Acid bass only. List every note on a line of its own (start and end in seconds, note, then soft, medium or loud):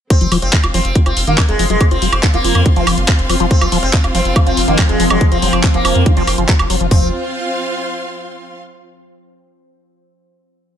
0.21 0.27 F3 medium
0.32 0.38 F3 loud
0.53 0.57 D#3 medium
0.64 0.67 F4 medium
0.74 0.80 F3 medium
0.95 1.02 F4 medium
1.06 1.12 F4 medium
1.27 1.36 D#3 medium
1.38 1.42 D#3 medium
1.59 1.65 F3 medium
1.70 1.76 F#3 medium
1.91 1.97 F4 medium
2.02 2.08 F#3 medium
2.23 2.27 D#3 medium
2.34 2.37 F3 medium
2.44 2.67 F3 medium
2.66 2.72 F4 loud
2.76 2.99 F3 loud
2.98 3.04 G#3 medium
3.08 3.12 D#3 medium
3.30 3.36 F3 medium
3.40 3.46 F3 loud
3.61 3.68 F3 medium
3.72 3.78 F3 loud
3.93 3.97 D#3 medium
4.04 4.08 F4 medium
4.15 4.21 F3 medium
4.36 4.42 F4 medium
4.47 4.53 F4 medium
4.68 4.77 D#3 medium
4.78 4.82 D#3 medium
5.00 5.06 F3 medium
5.10 5.16 F#3 medium
5.32 5.38 F4 medium
5.42 5.48 F#3 medium
5.64 5.67 D#3 medium
5.74 5.78 F3 medium
5.85 6.08 F3 medium
6.06 6.12 F4 loud
6.17 6.23 F3 loud
6.38 6.44 F3 medium
6.49 6.55 F#3 medium
6.70 6.76 F#3 medium
6.81 6.87 F3 medium
6.91 7.11 F3 medium